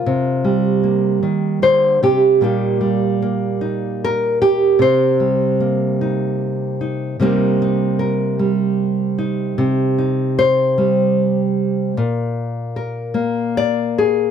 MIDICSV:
0, 0, Header, 1, 2, 480
1, 0, Start_track
1, 0, Key_signature, -3, "minor"
1, 0, Tempo, 794702
1, 32, Time_signature, 6, 3, 24, 8
1, 8641, End_track
2, 0, Start_track
2, 0, Title_t, "Nylon-string guitar"
2, 0, Program_c, 0, 24
2, 0, Note_on_c, 0, 55, 53
2, 0, Note_on_c, 0, 58, 38
2, 0, Note_on_c, 0, 65, 80
2, 0, Note_on_c, 0, 70, 95
2, 39, Note_on_c, 0, 48, 75
2, 266, Note_off_c, 0, 55, 0
2, 268, Note_on_c, 0, 55, 55
2, 272, Note_off_c, 0, 70, 0
2, 502, Note_off_c, 0, 58, 0
2, 504, Note_on_c, 0, 58, 43
2, 513, Note_off_c, 0, 65, 0
2, 738, Note_off_c, 0, 48, 0
2, 741, Note_on_c, 0, 51, 57
2, 978, Note_off_c, 0, 51, 0
2, 980, Note_on_c, 0, 50, 62
2, 984, Note_on_c, 0, 72, 92
2, 1222, Note_off_c, 0, 50, 0
2, 1224, Note_on_c, 0, 48, 62
2, 1225, Note_off_c, 0, 72, 0
2, 1229, Note_on_c, 0, 67, 84
2, 1455, Note_on_c, 0, 46, 70
2, 1458, Note_off_c, 0, 55, 0
2, 1460, Note_on_c, 0, 55, 53
2, 1461, Note_off_c, 0, 58, 0
2, 1463, Note_on_c, 0, 58, 52
2, 1465, Note_off_c, 0, 48, 0
2, 1466, Note_off_c, 0, 67, 0
2, 1470, Note_on_c, 0, 63, 52
2, 1473, Note_on_c, 0, 67, 51
2, 1693, Note_off_c, 0, 55, 0
2, 1695, Note_on_c, 0, 55, 55
2, 1944, Note_off_c, 0, 58, 0
2, 1947, Note_on_c, 0, 58, 47
2, 2179, Note_off_c, 0, 63, 0
2, 2181, Note_on_c, 0, 63, 45
2, 2440, Note_off_c, 0, 67, 0
2, 2443, Note_on_c, 0, 70, 91
2, 2665, Note_off_c, 0, 70, 0
2, 2667, Note_on_c, 0, 67, 82
2, 2868, Note_off_c, 0, 46, 0
2, 2893, Note_on_c, 0, 48, 77
2, 2905, Note_off_c, 0, 67, 0
2, 2910, Note_on_c, 0, 72, 98
2, 3138, Note_off_c, 0, 55, 0
2, 3140, Note_on_c, 0, 55, 53
2, 3377, Note_off_c, 0, 58, 0
2, 3384, Note_on_c, 0, 58, 39
2, 3629, Note_off_c, 0, 63, 0
2, 3631, Note_on_c, 0, 63, 41
2, 4105, Note_off_c, 0, 63, 0
2, 4112, Note_on_c, 0, 63, 42
2, 4321, Note_off_c, 0, 55, 0
2, 4323, Note_off_c, 0, 63, 0
2, 4339, Note_off_c, 0, 48, 0
2, 4346, Note_on_c, 0, 48, 67
2, 4353, Note_off_c, 0, 58, 0
2, 4353, Note_on_c, 0, 55, 60
2, 4355, Note_off_c, 0, 72, 0
2, 4360, Note_on_c, 0, 58, 55
2, 4363, Note_on_c, 0, 63, 61
2, 4366, Note_on_c, 0, 70, 65
2, 4599, Note_off_c, 0, 63, 0
2, 4601, Note_on_c, 0, 63, 54
2, 4825, Note_off_c, 0, 70, 0
2, 4827, Note_on_c, 0, 70, 53
2, 5067, Note_off_c, 0, 55, 0
2, 5070, Note_on_c, 0, 55, 59
2, 5545, Note_off_c, 0, 63, 0
2, 5547, Note_on_c, 0, 63, 50
2, 5778, Note_off_c, 0, 48, 0
2, 5786, Note_on_c, 0, 48, 72
2, 5804, Note_off_c, 0, 70, 0
2, 6027, Note_off_c, 0, 63, 0
2, 6030, Note_on_c, 0, 63, 40
2, 6273, Note_on_c, 0, 72, 106
2, 6507, Note_off_c, 0, 55, 0
2, 6510, Note_on_c, 0, 55, 62
2, 7201, Note_off_c, 0, 55, 0
2, 7228, Note_off_c, 0, 48, 0
2, 7232, Note_off_c, 0, 72, 0
2, 7232, Note_on_c, 0, 46, 74
2, 7238, Note_off_c, 0, 58, 0
2, 7708, Note_on_c, 0, 70, 50
2, 7938, Note_on_c, 0, 58, 62
2, 8144, Note_off_c, 0, 63, 0
2, 8190, Note_off_c, 0, 70, 0
2, 8198, Note_on_c, 0, 74, 93
2, 8446, Note_on_c, 0, 68, 81
2, 8637, Note_off_c, 0, 58, 0
2, 8641, Note_off_c, 0, 46, 0
2, 8641, Note_off_c, 0, 68, 0
2, 8641, Note_off_c, 0, 74, 0
2, 8641, End_track
0, 0, End_of_file